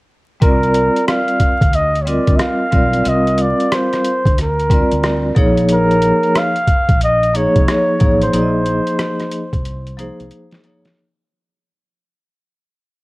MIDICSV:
0, 0, Header, 1, 5, 480
1, 0, Start_track
1, 0, Key_signature, -3, "minor"
1, 0, Tempo, 659341
1, 306, Time_signature, 4, 2, 24, 8
1, 9491, End_track
2, 0, Start_track
2, 0, Title_t, "Flugelhorn"
2, 0, Program_c, 0, 56
2, 310, Note_on_c, 0, 70, 104
2, 759, Note_off_c, 0, 70, 0
2, 784, Note_on_c, 0, 77, 97
2, 1275, Note_on_c, 0, 75, 98
2, 1286, Note_off_c, 0, 77, 0
2, 1470, Note_on_c, 0, 73, 63
2, 1481, Note_off_c, 0, 75, 0
2, 1508, Note_on_c, 0, 74, 91
2, 1519, Note_off_c, 0, 73, 0
2, 1723, Note_on_c, 0, 76, 69
2, 1734, Note_off_c, 0, 74, 0
2, 1755, Note_on_c, 0, 77, 96
2, 1766, Note_off_c, 0, 76, 0
2, 2243, Note_on_c, 0, 75, 100
2, 2254, Note_off_c, 0, 77, 0
2, 2485, Note_on_c, 0, 74, 88
2, 2496, Note_off_c, 0, 75, 0
2, 2723, Note_on_c, 0, 72, 90
2, 2734, Note_off_c, 0, 74, 0
2, 3194, Note_off_c, 0, 72, 0
2, 3212, Note_on_c, 0, 70, 81
2, 3890, Note_off_c, 0, 70, 0
2, 4172, Note_on_c, 0, 70, 105
2, 4644, Note_on_c, 0, 77, 105
2, 4655, Note_off_c, 0, 70, 0
2, 5115, Note_off_c, 0, 77, 0
2, 5121, Note_on_c, 0, 75, 105
2, 5358, Note_on_c, 0, 73, 99
2, 5369, Note_off_c, 0, 75, 0
2, 5983, Note_off_c, 0, 73, 0
2, 5987, Note_on_c, 0, 72, 88
2, 7481, Note_off_c, 0, 72, 0
2, 9491, End_track
3, 0, Start_track
3, 0, Title_t, "Vibraphone"
3, 0, Program_c, 1, 11
3, 294, Note_on_c, 1, 55, 69
3, 302, Note_on_c, 1, 60, 62
3, 305, Note_on_c, 1, 65, 62
3, 312, Note_on_c, 1, 70, 63
3, 318, Note_on_c, 1, 74, 74
3, 1068, Note_off_c, 1, 55, 0
3, 1072, Note_off_c, 1, 60, 0
3, 1073, Note_off_c, 1, 65, 0
3, 1077, Note_off_c, 1, 70, 0
3, 1080, Note_off_c, 1, 74, 0
3, 1493, Note_on_c, 1, 55, 66
3, 1499, Note_on_c, 1, 60, 62
3, 1508, Note_on_c, 1, 65, 64
3, 1513, Note_on_c, 1, 70, 63
3, 1517, Note_on_c, 1, 75, 71
3, 1906, Note_off_c, 1, 55, 0
3, 1909, Note_off_c, 1, 60, 0
3, 1913, Note_off_c, 1, 65, 0
3, 1916, Note_off_c, 1, 70, 0
3, 1918, Note_off_c, 1, 75, 0
3, 1968, Note_on_c, 1, 55, 67
3, 1975, Note_on_c, 1, 60, 57
3, 1981, Note_on_c, 1, 65, 59
3, 1985, Note_on_c, 1, 70, 59
3, 1993, Note_on_c, 1, 74, 72
3, 2180, Note_off_c, 1, 55, 0
3, 2183, Note_off_c, 1, 60, 0
3, 2187, Note_off_c, 1, 65, 0
3, 2189, Note_off_c, 1, 70, 0
3, 2193, Note_off_c, 1, 74, 0
3, 2206, Note_on_c, 1, 55, 67
3, 2214, Note_on_c, 1, 60, 64
3, 2220, Note_on_c, 1, 65, 61
3, 2227, Note_on_c, 1, 70, 66
3, 2231, Note_on_c, 1, 77, 73
3, 2984, Note_off_c, 1, 55, 0
3, 2988, Note_off_c, 1, 60, 0
3, 2991, Note_off_c, 1, 65, 0
3, 2995, Note_off_c, 1, 70, 0
3, 2996, Note_off_c, 1, 77, 0
3, 3421, Note_on_c, 1, 55, 69
3, 3423, Note_on_c, 1, 60, 61
3, 3426, Note_on_c, 1, 65, 61
3, 3436, Note_on_c, 1, 70, 66
3, 3442, Note_on_c, 1, 74, 76
3, 3830, Note_off_c, 1, 55, 0
3, 3831, Note_off_c, 1, 60, 0
3, 3833, Note_off_c, 1, 65, 0
3, 3837, Note_off_c, 1, 70, 0
3, 3840, Note_off_c, 1, 74, 0
3, 3894, Note_on_c, 1, 53, 90
3, 3894, Note_on_c, 1, 58, 81
3, 3904, Note_on_c, 1, 63, 78
3, 3911, Note_on_c, 1, 68, 81
3, 3916, Note_on_c, 1, 73, 98
3, 4681, Note_off_c, 1, 53, 0
3, 4681, Note_off_c, 1, 58, 0
3, 4686, Note_off_c, 1, 63, 0
3, 4690, Note_off_c, 1, 68, 0
3, 4692, Note_off_c, 1, 73, 0
3, 5338, Note_on_c, 1, 53, 66
3, 5341, Note_on_c, 1, 58, 67
3, 5348, Note_on_c, 1, 63, 64
3, 5353, Note_on_c, 1, 68, 64
3, 5362, Note_on_c, 1, 73, 78
3, 5748, Note_off_c, 1, 53, 0
3, 5750, Note_off_c, 1, 58, 0
3, 5753, Note_off_c, 1, 63, 0
3, 5756, Note_off_c, 1, 68, 0
3, 5760, Note_off_c, 1, 73, 0
3, 5818, Note_on_c, 1, 53, 64
3, 5822, Note_on_c, 1, 58, 60
3, 5828, Note_on_c, 1, 63, 59
3, 5837, Note_on_c, 1, 68, 59
3, 5839, Note_on_c, 1, 73, 73
3, 6025, Note_off_c, 1, 53, 0
3, 6027, Note_off_c, 1, 58, 0
3, 6030, Note_off_c, 1, 63, 0
3, 6035, Note_off_c, 1, 68, 0
3, 6035, Note_off_c, 1, 73, 0
3, 6061, Note_on_c, 1, 53, 68
3, 6066, Note_on_c, 1, 58, 64
3, 6070, Note_on_c, 1, 63, 64
3, 6076, Note_on_c, 1, 68, 64
3, 6085, Note_on_c, 1, 74, 61
3, 6130, Note_on_c, 1, 75, 78
3, 6136, Note_off_c, 1, 74, 0
3, 6831, Note_off_c, 1, 53, 0
3, 6834, Note_off_c, 1, 58, 0
3, 6836, Note_off_c, 1, 63, 0
3, 6839, Note_off_c, 1, 68, 0
3, 6866, Note_off_c, 1, 75, 0
3, 7259, Note_on_c, 1, 53, 79
3, 7267, Note_on_c, 1, 58, 75
3, 7272, Note_on_c, 1, 63, 73
3, 7279, Note_on_c, 1, 68, 75
3, 7281, Note_on_c, 1, 72, 87
3, 7669, Note_off_c, 1, 53, 0
3, 7673, Note_off_c, 1, 58, 0
3, 7675, Note_off_c, 1, 63, 0
3, 7679, Note_off_c, 1, 68, 0
3, 7680, Note_off_c, 1, 72, 0
3, 7746, Note_on_c, 1, 53, 79
3, 7748, Note_on_c, 1, 58, 69
3, 7759, Note_on_c, 1, 63, 70
3, 7763, Note_on_c, 1, 68, 72
3, 7765, Note_on_c, 1, 73, 83
3, 7949, Note_off_c, 1, 53, 0
3, 7950, Note_off_c, 1, 58, 0
3, 7955, Note_off_c, 1, 63, 0
3, 7958, Note_off_c, 1, 68, 0
3, 7959, Note_off_c, 1, 73, 0
3, 9491, End_track
4, 0, Start_track
4, 0, Title_t, "Fretless electric bass"
4, 0, Program_c, 2, 35
4, 308, Note_on_c, 2, 36, 100
4, 640, Note_off_c, 2, 36, 0
4, 1176, Note_on_c, 2, 38, 77
4, 1584, Note_off_c, 2, 38, 0
4, 1657, Note_on_c, 2, 38, 84
4, 1732, Note_off_c, 2, 38, 0
4, 1985, Note_on_c, 2, 35, 92
4, 2189, Note_off_c, 2, 35, 0
4, 2225, Note_on_c, 2, 36, 101
4, 2559, Note_off_c, 2, 36, 0
4, 3096, Note_on_c, 2, 38, 76
4, 3504, Note_off_c, 2, 38, 0
4, 3582, Note_on_c, 2, 38, 77
4, 3858, Note_off_c, 2, 38, 0
4, 3906, Note_on_c, 2, 34, 91
4, 4443, Note_off_c, 2, 34, 0
4, 5015, Note_on_c, 2, 34, 73
4, 5424, Note_off_c, 2, 34, 0
4, 5504, Note_on_c, 2, 36, 84
4, 5576, Note_off_c, 2, 36, 0
4, 5832, Note_on_c, 2, 33, 83
4, 6033, Note_off_c, 2, 33, 0
4, 6069, Note_on_c, 2, 34, 100
4, 6401, Note_off_c, 2, 34, 0
4, 6941, Note_on_c, 2, 36, 81
4, 7347, Note_off_c, 2, 36, 0
4, 7426, Note_on_c, 2, 36, 82
4, 7497, Note_off_c, 2, 36, 0
4, 9491, End_track
5, 0, Start_track
5, 0, Title_t, "Drums"
5, 307, Note_on_c, 9, 36, 113
5, 307, Note_on_c, 9, 42, 83
5, 380, Note_off_c, 9, 36, 0
5, 380, Note_off_c, 9, 42, 0
5, 463, Note_on_c, 9, 42, 31
5, 536, Note_off_c, 9, 42, 0
5, 543, Note_on_c, 9, 42, 61
5, 616, Note_off_c, 9, 42, 0
5, 703, Note_on_c, 9, 42, 42
5, 776, Note_off_c, 9, 42, 0
5, 787, Note_on_c, 9, 42, 75
5, 788, Note_on_c, 9, 37, 106
5, 860, Note_off_c, 9, 42, 0
5, 861, Note_off_c, 9, 37, 0
5, 932, Note_on_c, 9, 42, 31
5, 1005, Note_off_c, 9, 42, 0
5, 1018, Note_on_c, 9, 42, 72
5, 1019, Note_on_c, 9, 36, 75
5, 1091, Note_off_c, 9, 42, 0
5, 1092, Note_off_c, 9, 36, 0
5, 1174, Note_on_c, 9, 36, 97
5, 1179, Note_on_c, 9, 42, 53
5, 1247, Note_off_c, 9, 36, 0
5, 1252, Note_off_c, 9, 42, 0
5, 1262, Note_on_c, 9, 42, 76
5, 1335, Note_off_c, 9, 42, 0
5, 1423, Note_on_c, 9, 42, 31
5, 1496, Note_off_c, 9, 42, 0
5, 1507, Note_on_c, 9, 42, 80
5, 1580, Note_off_c, 9, 42, 0
5, 1655, Note_on_c, 9, 42, 51
5, 1657, Note_on_c, 9, 36, 79
5, 1728, Note_off_c, 9, 42, 0
5, 1730, Note_off_c, 9, 36, 0
5, 1741, Note_on_c, 9, 42, 87
5, 1744, Note_on_c, 9, 37, 96
5, 1814, Note_off_c, 9, 42, 0
5, 1816, Note_off_c, 9, 37, 0
5, 1981, Note_on_c, 9, 42, 53
5, 1986, Note_on_c, 9, 36, 87
5, 2053, Note_off_c, 9, 42, 0
5, 2059, Note_off_c, 9, 36, 0
5, 2134, Note_on_c, 9, 42, 43
5, 2207, Note_off_c, 9, 42, 0
5, 2221, Note_on_c, 9, 42, 88
5, 2293, Note_off_c, 9, 42, 0
5, 2380, Note_on_c, 9, 42, 35
5, 2453, Note_off_c, 9, 42, 0
5, 2458, Note_on_c, 9, 42, 58
5, 2530, Note_off_c, 9, 42, 0
5, 2620, Note_on_c, 9, 42, 43
5, 2693, Note_off_c, 9, 42, 0
5, 2706, Note_on_c, 9, 42, 76
5, 2708, Note_on_c, 9, 37, 101
5, 2779, Note_off_c, 9, 42, 0
5, 2780, Note_off_c, 9, 37, 0
5, 2859, Note_on_c, 9, 42, 32
5, 2864, Note_on_c, 9, 37, 34
5, 2931, Note_off_c, 9, 42, 0
5, 2937, Note_off_c, 9, 37, 0
5, 2944, Note_on_c, 9, 42, 75
5, 3017, Note_off_c, 9, 42, 0
5, 3095, Note_on_c, 9, 36, 93
5, 3103, Note_on_c, 9, 42, 49
5, 3168, Note_off_c, 9, 36, 0
5, 3176, Note_off_c, 9, 42, 0
5, 3188, Note_on_c, 9, 42, 75
5, 3193, Note_on_c, 9, 37, 34
5, 3260, Note_off_c, 9, 42, 0
5, 3266, Note_off_c, 9, 37, 0
5, 3344, Note_on_c, 9, 42, 29
5, 3416, Note_off_c, 9, 42, 0
5, 3420, Note_on_c, 9, 36, 91
5, 3426, Note_on_c, 9, 42, 78
5, 3493, Note_off_c, 9, 36, 0
5, 3499, Note_off_c, 9, 42, 0
5, 3577, Note_on_c, 9, 42, 53
5, 3650, Note_off_c, 9, 42, 0
5, 3665, Note_on_c, 9, 42, 86
5, 3667, Note_on_c, 9, 37, 98
5, 3738, Note_off_c, 9, 42, 0
5, 3740, Note_off_c, 9, 37, 0
5, 3903, Note_on_c, 9, 42, 58
5, 3905, Note_on_c, 9, 36, 100
5, 3976, Note_off_c, 9, 42, 0
5, 3978, Note_off_c, 9, 36, 0
5, 4059, Note_on_c, 9, 42, 43
5, 4132, Note_off_c, 9, 42, 0
5, 4141, Note_on_c, 9, 42, 84
5, 4214, Note_off_c, 9, 42, 0
5, 4304, Note_on_c, 9, 42, 35
5, 4377, Note_off_c, 9, 42, 0
5, 4383, Note_on_c, 9, 42, 60
5, 4456, Note_off_c, 9, 42, 0
5, 4538, Note_on_c, 9, 42, 42
5, 4611, Note_off_c, 9, 42, 0
5, 4626, Note_on_c, 9, 42, 81
5, 4627, Note_on_c, 9, 37, 102
5, 4699, Note_off_c, 9, 42, 0
5, 4700, Note_off_c, 9, 37, 0
5, 4774, Note_on_c, 9, 42, 33
5, 4847, Note_off_c, 9, 42, 0
5, 4859, Note_on_c, 9, 36, 80
5, 4860, Note_on_c, 9, 42, 73
5, 4932, Note_off_c, 9, 36, 0
5, 4932, Note_off_c, 9, 42, 0
5, 5014, Note_on_c, 9, 36, 88
5, 5014, Note_on_c, 9, 42, 51
5, 5087, Note_off_c, 9, 36, 0
5, 5087, Note_off_c, 9, 42, 0
5, 5104, Note_on_c, 9, 42, 76
5, 5176, Note_off_c, 9, 42, 0
5, 5264, Note_on_c, 9, 42, 32
5, 5337, Note_off_c, 9, 42, 0
5, 5348, Note_on_c, 9, 42, 74
5, 5421, Note_off_c, 9, 42, 0
5, 5500, Note_on_c, 9, 42, 56
5, 5501, Note_on_c, 9, 36, 81
5, 5573, Note_off_c, 9, 42, 0
5, 5574, Note_off_c, 9, 36, 0
5, 5591, Note_on_c, 9, 42, 88
5, 5593, Note_on_c, 9, 37, 102
5, 5663, Note_off_c, 9, 42, 0
5, 5665, Note_off_c, 9, 37, 0
5, 5824, Note_on_c, 9, 42, 56
5, 5831, Note_on_c, 9, 36, 90
5, 5897, Note_off_c, 9, 42, 0
5, 5904, Note_off_c, 9, 36, 0
5, 5981, Note_on_c, 9, 42, 47
5, 6054, Note_off_c, 9, 42, 0
5, 6068, Note_on_c, 9, 42, 87
5, 6141, Note_off_c, 9, 42, 0
5, 6305, Note_on_c, 9, 42, 59
5, 6378, Note_off_c, 9, 42, 0
5, 6460, Note_on_c, 9, 42, 45
5, 6533, Note_off_c, 9, 42, 0
5, 6547, Note_on_c, 9, 42, 81
5, 6549, Note_on_c, 9, 37, 109
5, 6620, Note_off_c, 9, 42, 0
5, 6621, Note_off_c, 9, 37, 0
5, 6697, Note_on_c, 9, 42, 31
5, 6702, Note_on_c, 9, 37, 34
5, 6770, Note_off_c, 9, 42, 0
5, 6775, Note_off_c, 9, 37, 0
5, 6783, Note_on_c, 9, 42, 77
5, 6856, Note_off_c, 9, 42, 0
5, 6938, Note_on_c, 9, 36, 94
5, 6941, Note_on_c, 9, 42, 55
5, 7011, Note_off_c, 9, 36, 0
5, 7014, Note_off_c, 9, 42, 0
5, 7027, Note_on_c, 9, 42, 76
5, 7100, Note_off_c, 9, 42, 0
5, 7184, Note_on_c, 9, 42, 32
5, 7257, Note_off_c, 9, 42, 0
5, 7272, Note_on_c, 9, 42, 74
5, 7344, Note_off_c, 9, 42, 0
5, 7425, Note_on_c, 9, 42, 50
5, 7498, Note_off_c, 9, 42, 0
5, 7505, Note_on_c, 9, 42, 84
5, 7578, Note_off_c, 9, 42, 0
5, 7654, Note_on_c, 9, 42, 34
5, 7662, Note_on_c, 9, 38, 77
5, 7727, Note_off_c, 9, 42, 0
5, 7735, Note_off_c, 9, 38, 0
5, 7744, Note_on_c, 9, 42, 58
5, 7817, Note_off_c, 9, 42, 0
5, 7898, Note_on_c, 9, 42, 44
5, 7902, Note_on_c, 9, 38, 81
5, 7971, Note_off_c, 9, 42, 0
5, 7975, Note_off_c, 9, 38, 0
5, 9491, End_track
0, 0, End_of_file